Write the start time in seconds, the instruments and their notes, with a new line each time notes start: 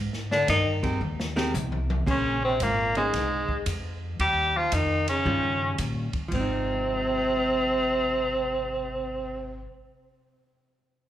Already playing: upright bass G#2
0.13 snare
0.31 baritone saxophone D3, tenor saxophone D4, snare
0.48 upright bass G2, baritone saxophone D#3, tenor saxophone D#4, kick, snare, hi-hat pedal, ride
0.83 hollow-body jazz guitar G#3 C4 G4 A#4, kick, ride
1.01 upright bass D#2, high tom
1.20 snare
1.36 hollow-body jazz guitar G#3 C4 G4 A#4, snare
1.54 upright bass C2, hi-hat pedal, high tom
1.72 high tom
1.90 high tom
2.07 upright bass A#1, baritone saxophone C#3, hollow-body jazz guitar A#3 C#4 G#4 C5, tenor saxophone C#4, kick, crash
2.45 baritone saxophone C3, tenor saxophone C4
2.60 upright bass G#1, baritone saxophone A#2, tenor saxophone A#3, kick, hi-hat pedal, ride
2.95 baritone saxophone G#2, tenor saxophone G#3, hollow-body jazz guitar A#3 C#4 G#4 C5, ride
3.13 upright bass C2, kick, snare, ride
3.49 muted upright bass stroke, kick
3.66 upright bass F2, kick, hi-hat pedal, ride
4.19 upright bass D#2, baritone saxophone G3, tenor saxophone G4, kick, ride
4.56 baritone saxophone F3, tenor saxophone F4
4.72 upright bass F2, baritone saxophone D#3, tenor saxophone D#4, kick, hi-hat pedal, ride
5.08 baritone saxophone C#3, tenor saxophone C#4, ride
5.25 upright bass G2, hollow-body jazz guitar D#3 G3 C#4 F4, kick
5.78 upright bass A#2, kick, hi-hat pedal, ride
6.13 muted upright bass stroke, kick, ride
6.28 upright bass G#1, hollow-body jazz guitar F3, kick, crash
6.33 baritone saxophone C3, tenor saxophone C4, hollow-body jazz guitar C4
6.41 hollow-body jazz guitar D#4